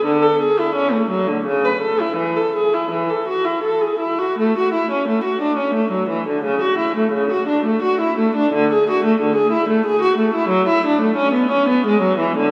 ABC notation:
X:1
M:3/4
L:1/16
Q:1/4=87
K:A
V:1 name="Viola"
D, A G E C A, F, D, C, B A E | E, A G E E, A F E A G E F | A, F E C A, F D C A, F, E, D, | C, F E A, C, F D A, F E A, D |
D, G F A, D, G E A, G F A, E | F, E D A, C B, C B, G, F, E, D, |]